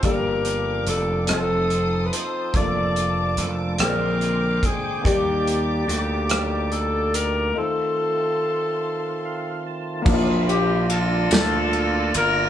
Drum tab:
CC |------|------|------|------|
RD |------|------|------|------|
HH |xxxxxx|xxxxxx|xxxxxx|------|
SD |---r--|---r--|---r--|------|
BD |o-----|o----o|o-----|------|

CC |x-----|
RD |-bbbbb|
HH |------|
SD |---o--|
BD |o-----|